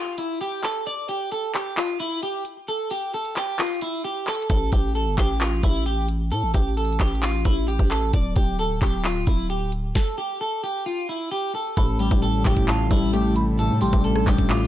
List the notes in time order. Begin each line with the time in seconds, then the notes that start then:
Already playing: F4
0.18 E4, closed hi-hat
0.41 G4, closed hi-hat
0.52 closed hi-hat
0.63 A4, clap, closed hi-hat
0.86 D5, closed hi-hat
1.08 G4, closed hi-hat
1.32 A4, closed hi-hat
1.54 G4, clap, closed hi-hat
1.77 F4, clap, closed hi-hat
2.00 E4, closed hi-hat
2.23 G4, closed hi-hat
2.45 closed hi-hat
2.68 A4, closed hi-hat
2.90 G4, open hi-hat
3.14 A4, closed hi-hat
3.25 closed hi-hat
3.36 G4, clap, closed hi-hat
3.59 F4, clap, closed hi-hat
3.67 closed hi-hat
3.74 closed hi-hat
3.81 E4, closed hi-hat
4.04 G4, closed hi-hat
4.27 A4, clap, closed hi-hat
4.35 closed hi-hat
4.42 closed hi-hat
4.50 A1 A4, kick, closed hi-hat
4.72 A1 G4, kick, closed hi-hat
4.95 A4, closed hi-hat
5.07 G1
5.18 A1 G4, kick, clap, closed hi-hat
5.41 F4, clap, closed hi-hat
5.63 A1 E4, kick, closed hi-hat
5.86 G4, closed hi-hat
6.08 closed hi-hat
6.32 A2 A4, closed hi-hat
6.43 A1
6.54 A1 G4, kick, closed hi-hat
6.77 A4, closed hi-hat
6.85 closed hi-hat
6.92 closed hi-hat
7.00 A1 G4, kick, clap, closed hi-hat
7.07 closed hi-hat
7.15 closed hi-hat
7.23 F4, clap, closed hi-hat
7.45 A1 E4, kick, closed hi-hat
7.68 G4, closed hi-hat
7.79 A1, kick, closed hi-hat
7.91 A4, clap, closed hi-hat
8.14 D1 D5, kick, closed hi-hat
8.36 D1 G4, kick, closed hi-hat
8.59 A4, closed hi-hat
8.82 D1 G4, kick, clap, closed hi-hat
9.04 F4, clap, closed hi-hat
9.27 D1 E4, kick, closed hi-hat
9.50 G4, closed hi-hat
9.72 closed hi-hat
9.95 A4, kick, snare
10.18 G4
10.41 A4
10.64 G4
10.86 F4
11.09 E4
11.31 G4
11.55 A4
11.77 A1 A2 C3 G3 A3 E4 A4 B5, kick, closed hi-hat
11.99 G3 G4, closed hi-hat
12.11 A1, kick
12.22 A2 A4, closed hi-hat
12.45 A1 A2 G4, kick, clap, closed hi-hat
12.57 kick
12.68 A2 F4 A5, clap, closed hi-hat
12.91 A1 G3 E4, kick, closed hi-hat
12.98 closed hi-hat
13.06 closed hi-hat
13.13 A3 G4, closed hi-hat
13.36 B5, closed hi-hat
13.59 A2 D4 A4, closed hi-hat
13.70 A2
13.81 A1 G3 G4 C6, open hi-hat
13.93 A1, kick
14.04 A2 A4, closed hi-hat
14.16 cross-stick
14.27 A1 A2 G4, kick, clap, closed hi-hat
14.38 kick
14.50 A2 F4 D6, clap, closed hi-hat
14.57 closed hi-hat